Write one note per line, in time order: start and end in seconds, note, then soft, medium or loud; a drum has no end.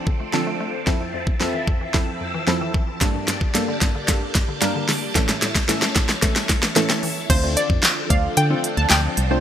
0.00 0.20 F3 medium
0.00 2.97 F3 medium
0.00 0.20 C4 medium
0.00 0.85 C4 medium
0.00 0.20 D4 medium
0.00 0.85 D4 medium
0.00 0.20 A4 medium
0.00 0.85 A4 medium
0.00 0.85 D5 medium
0.07 0.19 D3 medium
0.07 kick medium
0.20 0.32 A3 medium
0.33 0.46 D3 medium
0.33 0.74 F3 medium
0.33 0.74 C4 medium
0.33 0.74 D4 medium
0.33 0.74 A4 loud
0.33 snare medium
0.47 0.59 A3 medium
0.60 0.72 A3 medium
0.87 0.99 F2 medium
0.87 1.27 F3 medium
0.87 1.27 C4 medium
0.87 2.99 C4 medium
0.87 1.27 E4 medium
0.87 2.99 E4 medium
0.87 1.27 A4 loud
0.87 2.99 E5 medium
0.87 7.26 A5 medium
0.87 kick loud
0.87 snare medium
1.01 1.13 F2 medium
1.14 1.26 F2 medium
1.27 kick medium
1.40 1.53 F2 medium
1.40 1.81 F3 medium
1.40 1.81 C4 medium
1.40 1.81 E4 medium
1.40 1.81 A4 loud
1.40 snare medium
1.54 1.66 E3 medium
1.67 1.80 F2 medium
1.67 kick loud
1.81 1.93 E3 medium
1.94 2.06 F2 medium
1.94 2.34 F3 medium
1.94 2.34 C4 medium
1.94 2.34 E4 medium
1.94 2.34 A4 medium
1.94 kick loud
1.94 snare medium
2.21 2.33 F2 medium
2.34 2.46 E3 medium
2.47 2.60 F2 medium
2.47 2.88 F3 medium
2.47 2.88 C4 medium
2.47 2.88 E4 medium
2.47 2.88 A4 loud
2.47 snare medium
2.61 2.73 E3 medium
2.74 2.87 E3 medium
2.74 kick loud
3.01 3.13 G2 medium
3.01 3.42 G3 medium
3.01 3.42 A#3 medium
3.01 5.14 A#3 medium
3.01 3.42 D4 medium
3.01 5.14 D4 medium
3.01 5.14 G4 medium
3.01 3.42 A4 loud
3.01 5.14 D5 medium
3.01 kick loud
3.01 snare medium
3.01 closed hi-hat medium
3.15 3.27 G2 medium
3.28 3.40 G2 medium
3.28 snare medium
3.28 closed hi-hat medium
3.41 kick medium
3.54 3.67 G2 medium
3.54 3.95 G3 medium
3.54 3.95 A#3 medium
3.54 3.95 D4 medium
3.54 3.95 A4 loud
3.54 snare medium
3.54 closed hi-hat medium
3.68 3.80 D3 medium
3.81 3.94 G2 medium
3.81 kick loud
3.81 snare medium
3.81 closed hi-hat medium
3.95 4.07 D3 medium
4.08 4.21 G2 medium
4.08 4.48 G3 medium
4.08 4.49 A#3 medium
4.08 4.49 D4 medium
4.08 4.49 A4 medium
4.08 kick loud
4.08 snare medium
4.08 closed hi-hat loud
4.35 4.47 G2 medium
4.35 kick medium
4.35 snare medium
4.35 closed hi-hat medium
4.49 4.61 D3 medium
4.61 4.74 G2 medium
4.61 5.02 G3 loud
4.61 5.02 A#3 medium
4.61 5.02 D4 medium
4.61 5.02 A#4 loud
4.61 snare loud
4.61 closed hi-hat medium
4.76 4.88 D3 medium
4.89 5.01 D3 medium
4.89 snare loud
4.89 open hi-hat medium
5.15 5.28 A2 medium
5.15 5.56 E3 medium
5.15 5.56 A3 medium
5.15 5.56 C#4 medium
5.15 7.28 E4 medium
5.15 5.56 A4 loud
5.15 7.28 C#5 medium
5.15 kick loud
5.15 snare loud
5.15 closed hi-hat medium
5.29 5.41 A2 medium
5.29 snare loud
5.29 closed hi-hat medium
5.42 5.54 A2 medium
5.42 snare loud
5.42 closed hi-hat medium
5.55 kick medium
5.55 snare loud
5.55 closed hi-hat medium
5.68 5.81 A2 medium
5.68 6.09 E3 medium
5.68 6.09 A3 medium
5.68 6.09 C#4 medium
5.68 6.09 A4 loud
5.68 snare loud
5.68 closed hi-hat medium
5.82 5.95 E3 medium
5.82 snare loud
5.96 6.08 A2 medium
5.96 kick loud
5.96 snare loud
5.96 closed hi-hat medium
6.09 6.21 E3 medium
6.09 snare loud
6.22 6.35 A2 medium
6.22 6.63 E3 medium
6.22 6.63 A3 medium
6.22 6.63 C#4 medium
6.22 6.63 A4 medium
6.22 kick loud
6.22 snare loud
6.22 closed hi-hat loud
6.36 snare loud
6.49 6.62 A2 medium
6.49 kick medium
6.49 snare loud
6.49 closed hi-hat medium
6.63 6.75 E3 medium
6.63 snare loud
6.76 6.88 A2 medium
6.76 7.16 E3 loud
6.76 7.16 A3 medium
6.76 7.17 C#4 medium
6.76 7.17 A4 loud
6.76 snare loud
6.76 closed hi-hat medium
6.90 7.02 E3 medium
6.90 snare loud
7.03 7.15 E3 medium
7.03 open hi-hat medium
7.29 7.56 D2 loud
7.29 9.40 D3 medium
7.29 9.40 F3 medium
7.29 7.40 A3 medium
7.29 7.40 C4 medium
7.29 9.40 C4 medium
7.29 7.40 D4 medium
7.29 9.40 D4 medium
7.29 7.40 F4 medium
7.29 9.40 A4 medium
7.29 7.51 C5 loud
7.29 7.40 C5 medium
7.29 kick loud
7.29 closed hi-hat medium
7.29 crash loud
7.43 7.94 A3 medium
7.43 7.94 C4 medium
7.43 7.94 D4 medium
7.43 7.94 F4 medium
7.43 7.94 C5 medium
7.57 7.95 D5 medium
7.57 closed hi-hat medium
7.70 7.79 F2 medium
7.70 kick medium
7.83 snare loud
7.83 clap loud
7.83 closed hi-hat medium
8.10 8.28 D2 medium
8.10 8.40 A3 medium
8.10 8.40 C4 medium
8.10 8.40 D4 medium
8.10 8.40 F4 medium
8.10 8.41 D5 medium
8.10 8.21 F5 medium
8.10 kick loud
8.10 closed hi-hat medium
8.37 8.55 D3 loud
8.37 8.48 G5 medium
8.37 closed hi-hat loud
8.50 9.11 A3 medium
8.50 9.11 C4 medium
8.50 9.11 D4 medium
8.50 9.11 F4 medium
8.50 9.11 A4 medium
8.64 closed hi-hat medium
8.77 8.86 D2 medium
8.77 8.88 A5 medium
8.90 9.08 D2 loud
8.90 9.28 G5 medium
8.90 snare medium
8.90 clap loud
8.90 closed hi-hat medium
9.17 9.40 C2 loud
9.17 closed hi-hat medium
9.31 9.40 A3 medium
9.31 9.40 C4 medium
9.31 9.40 D4 medium
9.31 9.40 F4 medium
9.31 9.40 C5 loud